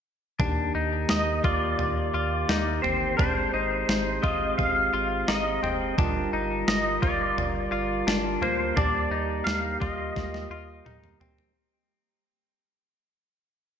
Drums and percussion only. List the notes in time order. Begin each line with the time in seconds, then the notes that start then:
0.40 kick, floor tom
1.09 snare
1.44 kick, floor tom
1.79 floor tom
2.49 snare
2.84 floor tom
3.19 kick, floor tom
3.89 snare
4.23 kick, floor tom
4.59 kick, floor tom
5.28 snare
5.64 floor tom
5.98 kick, floor tom
6.68 snare
7.03 kick, floor tom
7.38 floor tom
8.08 snare
8.43 floor tom
8.77 kick, floor tom
9.47 snare
9.81 kick, floor tom
10.16 kick, snare
10.34 snare
10.86 mid tom
11.04 mid tom
11.21 floor tom
11.38 floor tom